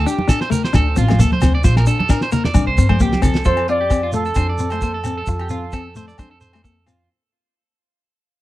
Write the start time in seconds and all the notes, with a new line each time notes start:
0.06 D4 G4, snare, shekere
0.19 high conga
0.28 D4 A4, kick, snare, low agogo, shekere
0.41 C5, snare
0.50 A3 A#4, low conga, shekere
0.64 C5, snare
0.73 D2 D4 A4, kick, snare, low agogo, shekere
0.96 A1 C4 F4, snare, shekere
1.08 A3, snare, high conga, low agogo
1.19 D2 A#3 A4, kick, shekere
1.32 C5, snare, high conga
1.42 D2 C4, snare, low conga, low agogo, shekere
1.55 D5
1.64 A#1 F4 C5, kick, shekere
1.76 A#4, snare, low agogo
1.86 D4 A4, shekere
1.99 A4, high conga
2.09 D4 A#4, kick, snare, low agogo, shekere
2.21 C5, snare
2.32 A#3 A#4, low conga, shekere
2.44 D5, snare, low conga
2.54 C2 D4, kick, high conga, low agogo, shekere
2.67 C5, kick
2.78 G2 C4, kick, shekere
2.89 A3 C5, kick, high conga, low agogo
3.00 C2 A#3 G4, kick, shekere
3.12 snare, high conga
3.22 C2 C4 A4, kick, low conga, low agogo, shekere
3.35 snare
3.44 F2 F4 A4 C5, kick, shekere
3.57 cross-stick, low agogo
3.68 C4 F4 D5, closed hi-hat
3.81 G4
3.90 C4, kick, cross-stick, low agogo, shekere
4.03 F4
4.13 A3 A4, closed hi-hat, shekere
4.25 A4, shekere
4.35 F2 D4 C5, kick, cross-stick, low agogo, shekere
4.49 D5
4.58 C4, closed hi-hat, shekere
4.70 A3 C5, cross-stick, low agogo, shekere
4.81 A#3 C5, kick, shekere
4.94 A4
5.04 C4, cross-stick, closed hi-hat, low agogo, shekere
5.18 A4
5.26 F2 F4, muted clean electric guitar stroke, kick, shekere
5.39 G4, cross-stick, low agogo
5.49 C4 F4, closed hi-hat, shekere
5.72 C4 A4, kick, cross-stick, low agogo, shekere
5.95 A3 C5, closed hi-hat, shekere
6.08 D5, shekere
6.18 F2 D4 C5, kick, cross-stick, low agogo, shekere
6.31 A4
6.41 C5, closed hi-hat, shekere
6.53 A3 C5, cross-stick, low agogo, shekere
6.64 A#3 A4, kick, shekere
6.86 C4 F4, cross-stick, closed hi-hat, low agogo, shekere